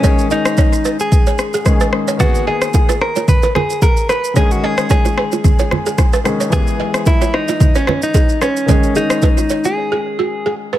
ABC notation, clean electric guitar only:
X:1
M:4/4
L:1/16
Q:"Swing 16ths" 1/4=111
K:C#dor
V:1 name="Clean electric guitar"
C2 D4- D G6- G z2 | F2 G4 A2 B2 G2 A2 B2 | G F G2 G8- G2 z2 | G4 E2 D3 C2 D3 C2- |
C2 D4- D G6- G z2 |]